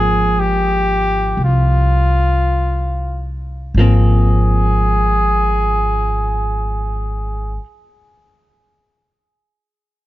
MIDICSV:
0, 0, Header, 1, 4, 480
1, 0, Start_track
1, 0, Key_signature, -4, "major"
1, 0, Tempo, 500000
1, 9662, End_track
2, 0, Start_track
2, 0, Title_t, "Trumpet"
2, 0, Program_c, 0, 56
2, 0, Note_on_c, 0, 68, 87
2, 379, Note_on_c, 0, 67, 87
2, 393, Note_off_c, 0, 68, 0
2, 1349, Note_off_c, 0, 67, 0
2, 1384, Note_on_c, 0, 65, 75
2, 3184, Note_off_c, 0, 65, 0
2, 3648, Note_on_c, 0, 68, 73
2, 7314, Note_off_c, 0, 68, 0
2, 9662, End_track
3, 0, Start_track
3, 0, Title_t, "Hollow-body jazz guitar"
3, 0, Program_c, 1, 26
3, 0, Note_on_c, 1, 53, 46
3, 0, Note_on_c, 1, 58, 43
3, 0, Note_on_c, 1, 60, 45
3, 3598, Note_off_c, 1, 53, 0
3, 3613, Note_off_c, 1, 58, 0
3, 3624, Note_off_c, 1, 60, 0
3, 3625, Note_on_c, 1, 53, 50
3, 3640, Note_on_c, 1, 58, 53
3, 3654, Note_on_c, 1, 60, 55
3, 7329, Note_off_c, 1, 53, 0
3, 7344, Note_off_c, 1, 58, 0
3, 7358, Note_off_c, 1, 60, 0
3, 9662, End_track
4, 0, Start_track
4, 0, Title_t, "Upright bass"
4, 0, Program_c, 2, 32
4, 0, Note_on_c, 2, 32, 70
4, 1271, Note_off_c, 2, 32, 0
4, 1317, Note_on_c, 2, 36, 62
4, 3569, Note_off_c, 2, 36, 0
4, 3595, Note_on_c, 2, 32, 75
4, 7260, Note_off_c, 2, 32, 0
4, 9662, End_track
0, 0, End_of_file